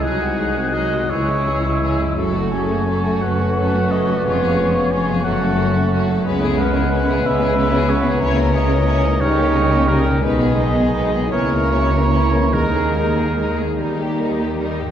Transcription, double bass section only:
\new Staff \with { instrumentName = "Double bass section" } { \clef bass \time 6/8 \key fis \dorian \tempo 4. = 58 bis,,4. cis,4. | fis,,4. fis,,4. | eis,,4. fis,,4. | \key dis \phrygian cis,4. cis,4. |
cis,4. cis,4. | b,,4. cis,4. | dis,4. dis,4. | }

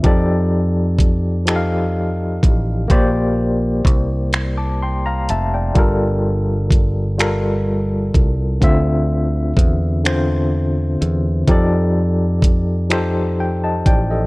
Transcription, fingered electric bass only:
\new Staff \with { instrumentName = "Fingered electric bass" } { \clef bass \time 6/8 \key f \major \tempo 4. = 42 f,2~ f,8 a,,8 | bes,,4 c,4. f,,8 | g,,2~ g,,8 c,8 | d,4 e,4. e,8 |
f,2~ f,8 a,,8 | }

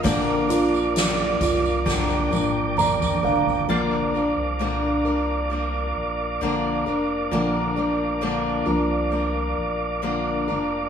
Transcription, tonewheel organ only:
\new Staff \with { instrumentName = "Tonewheel organ" } { \time 4/4 \key bes \major \tempo 4 = 66 << { <bes' d'' d'''>1 | <bes' d'' d'''>1~ | <bes' d'' d'''>1 | } \\ { f''2 g''2 | f''1~ | f''1 | } >> }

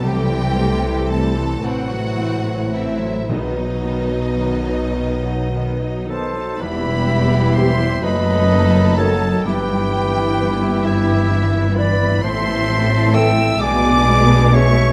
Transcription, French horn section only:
\new Staff \with { instrumentName = "French horn section" } { \time 6/8 \key e \minor \tempo 4. = 42 << { a'4. c''4. | b'2~ b'8 r8 | r4 g'16 r4 r16 a'16 r16 | r4 b'16 r4 r16 b'16 r16 |
r4 a'16 r4 r16 gis'16 r16 | } \\ { e2. | fis2~ fis8 r8 | r4 e16 r4 r16 dis16 r16 | r4 e16 r4 r16 e16 r16 |
r4 e16 r4 r16 gis16 r16 | } >> }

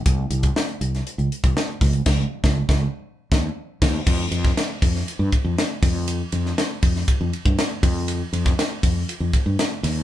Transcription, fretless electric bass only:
\new Staff \with { instrumentName = "Fretless electric bass" } { \clef bass \time 4/4 \key des \lydian \tempo 4 = 120 c,8 c,8 r8 c,8 r16 des,16 r16 c,16 r8 des,8 | des,8 r16 des,8 des,8 r8. ees,8 r8 ees,8 | f,8 f,8 r8 f,8 r16 g,16 r16 f,16 r8 f,8~ | f,8 f,8 r8 f,8 r16 f,16 r16 g,16 r8 f,8~ |
f,8 f,8 r8 f,8 r16 f,16 r16 g,16 r8 ees,8 | }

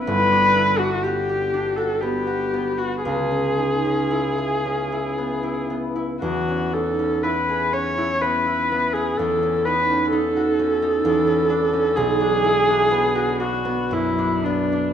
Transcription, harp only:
\new Staff \with { instrumentName = "Harp" } { \time 3/4 \key e \major \tempo 4 = 61 <g,, b>16 d'16 e'16 d'16 fis'16 g'16 d'16 fis'16 b16 fis'16 b16 fis'16 | cis,16 cis'16 dis'16 cis'16 e'16 gis'16 cis'16 e'16 b16 e'16 b16 e'16 | e,16 cis'16 dis'16 cis'16 e'16 gis'16 cis'16 e'16 b16 e'16 b16 e'16 | e,16 cis'16 dis'16 cis'16 dis'16 fis'16 cis'16 dis'16 e,16 cis'16 d'16 cis'16 |
b,,16 d'16 e'16 d'16 b16 fis'16 d'16 b16 fis,16 d'16 b16 d'16 | }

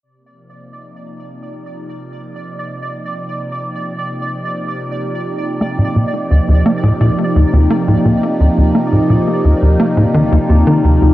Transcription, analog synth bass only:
\new Staff \with { instrumentName = "Analog synth bass" } { \clef bass \time 4/4 \key ees \major \tempo 4 = 86 r1 | r1 | bes16 a,16 bes,16 r16 ees,16 ees,16 bes16 a,16 bes,16 r16 ees,16 ees,16 bes16 a,16 bes,16 r16 | ees,16 ees,16 bes16 a,16 bes,16 r16 ees,16 ees,16 bes16 a,16 ees16 ees,16 ees,16 ees16 ees,16 ees,16 | }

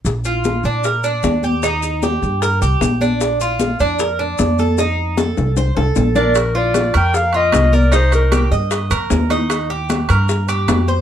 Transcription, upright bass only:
\new Staff \with { instrumentName = "Upright bass" } { \clef bass \time 4/4 \key bes \major \tempo 4 = 152 bes,,4. bes,4. ees,4~ | ees,4. g,4 c,8 bes,,4~ | bes,,4. f,4. f,4~ | f,4. c,4 c,8 bes,,4~ |
bes,,4. f,4. c,4~ | c,4. g,4 f,8 ees,4~ | ees,4. g,4. f,4 | }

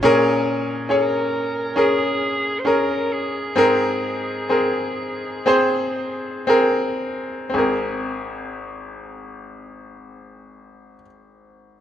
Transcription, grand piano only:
<<
  \new Staff \with { instrumentName = "Grand piano" } { \time 4/4 \key aes \major \tempo 4 = 61 <des' aes' bes'>4 <des' aes' des''>4 <des' aes' bes'>4 <des' aes' bes'>4 | <c' aes' bes'>4 <c' aes' bes'>4 <c' aes' c''>4 <c' aes' bes'>4 | <c' aes' bes'>1 | }
  \new Staff \with { instrumentName = "Grand piano" } { \clef bass \time 4/4 \key aes \major bes,4. r2 r8 | aes,4. r2 r8 | aes,,1 | }
>>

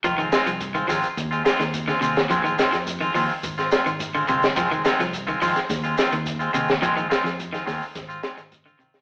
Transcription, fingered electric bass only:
\new Staff \with { instrumentName = "Fingered electric bass" } { \clef bass \time 4/4 \key f \minor \tempo 4 = 106 f,,8 r16 c,8. aes,,16 r16 ees,8 r16 ees,8. ees,8 | bes,,8 r16 f,8. ees,16 r16 aes,,8 r16 aes,,8. g,,8 | f,,8 r16 c,8. aes,,16 r16 ees,8 r16 ees,8. ees,8 | bes,,8 r16 f,8. ees,16 r16 aes,,8 r16 aes,,8. aes,,8 | }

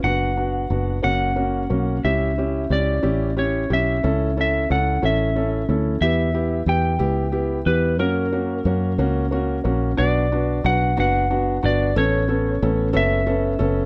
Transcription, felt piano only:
\new Staff \with { instrumentName = "Felt piano" } { \time 6/8 \key b \minor \tempo 4. = 60 <b d' fis'>8 <b d' fis'>8 <b d' fis'>8 <ais cis' fis'>8 <ais cis' fis'>8 <ais cis' fis'>8 | <cis' e' g'>8 <cis' e' g'>8 <cis' e' g'>8 <cis' e' g'>8 <cis' e' g'>8 <cis' e' g'>8 | <cis' e' a'>8 <cis' e' a'>8 <cis' e' a'>8 <cis' e' a'>8 <cis' e' a'>8 <cis' e' a'>8 | <b e' g'>8 <b e' g'>8 <b e' g'>8 <b e' g'>8 <b e' g'>8 <b e' g'>8 |
<ais cis' fis'>8 <ais cis' fis'>8 <ais cis' fis'>8 <ais cis' fis'>8 <ais cis' fis'>8 <ais cis' fis'>8 | <b d' fis'>8 <b d' fis'>8 <b d' fis'>8 <b d' fis'>8 <b d' fis'>8 <b d' fis'>8 | <b cis' a'>8 <b cis' a'>8 <b cis' a'>8 <b cis' a'>8 <b cis' a'>8 <b cis' a'>8 | }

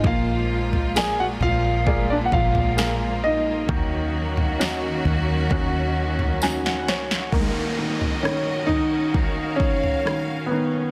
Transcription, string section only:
\new Staff \with { instrumentName = "String section" } { \time 4/4 \key ees \minor \tempo 4 = 66 << { <bes, f'>1 | <ees ges'>1 | ees''2 f''2 | } \\ { <f aes bes>1 | <ges des'>1 | <des' ges' bes'>1 | } >> }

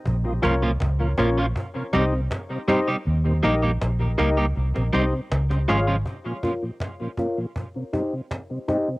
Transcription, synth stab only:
\new Staff \with { instrumentName = "Synth stab" } { \time 4/4 \key bes \dorian \tempo 4 = 80 r8 <des' f' bes' des''>16 r8. <des' f' bes' des''>16 r8. <ees' g' c'' ees''>16 r8. <ees' g' c'' ees''>16 r16 | r8 <ees' g' bes' ees''>16 r8. <ees' g' bes' ees''>16 r8. <ees' g' c'' ees''>16 r8. <f' aes' des'' f''>16 r16 | r8 <f' bes' des'' f''>16 r8. <f' bes' des'' f''>16 r8. <ees' g' c'' ees''>16 r8. <ees' g' c'' ees''>16 r16 | }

